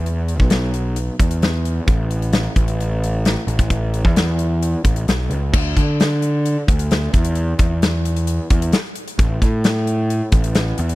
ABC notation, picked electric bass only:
X:1
M:4/4
L:1/16
Q:1/4=131
K:A
V:1 name="Picked electric bass" clef=bass
E,,3 B,,,6- B,,, E,,6 | A,,,6 A,,,8 A,,,2- | A,,,3 E,,6- E,, A,,,2 B,,,2 C,,2 | D,,2 D,8 D,,4 E,,2- |
E,,2 E,,8 E,,2 z4 | A,,,2 A,,8 A,,,4 E,,2 |]